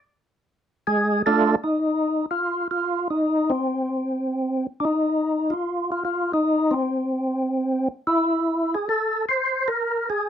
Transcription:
0.87 G#3 G#4
1.26 A3 D4 F4 A4
1.64 D#4
2.31 F4
2.71 F4
3.10 D#4
3.50 C4
4.80 D4
4.85 D#4
5.50 F4
5.92 F4
6.05 F4
6.33 D#4
6.71 C4
8.07 E4
8.74 G#4
8.89 A4
9.29 C5
9.68 A#4
10.10 G#4

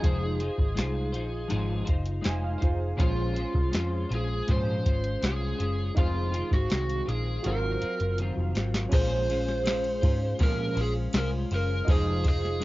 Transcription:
Already playing: G#4
0.00 F1 F3 G#3 D#4 F4 G#4, kick, closed hi-hat
0.04 C5
0.40 D#4 F4 C5, closed hi-hat
0.58 G#1, kick
0.75 C2 G#3 D#4 F4 C5, snare, closed hi-hat
1.12 A#1 D#4 F4 C5, closed hi-hat
1.48 G#1 F3 G#3 D#4 F4 C5, closed hi-hat
1.85 F#1 D#4 F4 C5, kick, closed hi-hat
2.06 closed hi-hat
2.21 G#3 D#4 F4 C5 G#5, closed hi-hat
2.26 F1, snare
2.44 F5
2.58 D#4 F4 C5
2.62 F1 F4 G#4 C5, kick, closed hi-hat
2.96 A#1 A#2 F3 G#3 C#4 F4 C5, kick, closed hi-hat
3.01 F4 G#4 C5
3.34 G#3 C#4 F4 C5, closed hi-hat
3.54 C2, kick
3.72 F2 G#3 C#4 F4 C5, snare, closed hi-hat
4.09 A#1 G#3 C#4 F4 C5, closed hi-hat
4.15 G#4
4.47 G#2 A#2 F3 G#3 C#4 F4 C5, kick, closed hi-hat
4.86 G#1 G#3 C#4 F4 C5, kick, closed hi-hat
5.04 closed hi-hat
5.22 C2 G#3 C#4 F4 C5, snare, closed hi-hat
5.26 G#4
5.58 F#1 G#3 C#4 F4 C5, closed hi-hat
5.95 F1 F2 C3 D#3 G#3 C4 D#4 F4 G#4 F5, kick, closed hi-hat
5.99 F4 C5
6.32 D#3 G#3 C4 F4, closed hi-hat
6.51 G#1 F#4, kick, snare
6.70 C2 D#3 G#3 C4, snare, closed hi-hat
6.90 closed hi-hat
7.06 A#1 D#3 G#3 C4 F4 G#4, closed hi-hat
7.43 G#1 G#2 D#3 F#3 C4 F4 F#4 A#4, closed hi-hat
7.47 A#4 C5
7.81 F#3 C4 F4, muted picked electric bass stroke, closed hi-hat
8.00 F#1, closed hi-hat
8.18 D#3 F#3 C4 F4, closed hi-hat
8.37 F1
8.55 G#1 F#3 C4 F4, snare, closed hi-hat
8.74 snare
8.89 A#1 A#2 F3 G#3 C#4 F4 G#4, kick, crash, ride
8.93 C5
9.28 G#3 C#4 F4 C5, ride
9.48 snare
9.64 G#3 C#4 F4 C5, snare, ride
9.84 ride
10.01 G#2 G#3 C#4 F4 C5, kick, ride
10.39 A#2 F3 G#3 C#4 F4 C5, kick, ride
10.43 A#4
10.75 A#1 G#3 C#4 F4 C5, ride
10.81 G#4
11.13 C2 G#3 C#4 F4, snare, ride
11.17 A#4 C5
11.51 F#1 G#3 C#4 F4 C5, ride
11.55 A#4
11.85 F1 F3 G#3 D#4 F4 G#4, kick, ride
11.89 D#4 F4 G#4 C5
12.23 D#4 F4 C5, kick, ride
12.29 G#4
12.45 snare
12.60 G#3 D#4

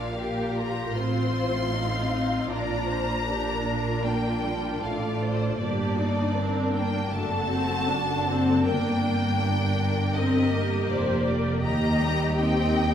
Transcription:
Already playing: A#1 A#2 D4 F4 D5 F5
0.15 G4 A#4
0.55 F4 A#5
0.94 A1 A2 C4 F4 C5 C6
1.35 F4
1.74 C4 D#4 F5
2.50 A#1 A#2 D4 D5 A#5
2.88 C5
3.26 D4 G4 A#4
3.66 F4
4.05 A#3 G5
4.44 G3
4.82 A1 A2 A3 D5 F5
5.21 C5
5.60 G1 G2 A#3 D4 G4 D5
5.98 D#4
6.36 C4 D4 A#4
6.73 A#3 G5
7.11 F#1 F#2 A3 D4 F#4 A4 A5
7.50 C4
7.87 D4 A4
8.25 C4
8.63 G1 G2 A#3 D4 A#4 G5
9.03 A#4
9.42 D4 A#4
10.15 C4 G4 D#5
10.52 A#3
10.89 F1 F2 C5 D5
11.26 D5
11.64 D#2 A#3 G4 D#5 A#5
12.02 G3
12.38 C4 D#4 D#5 G5
12.79 A#3

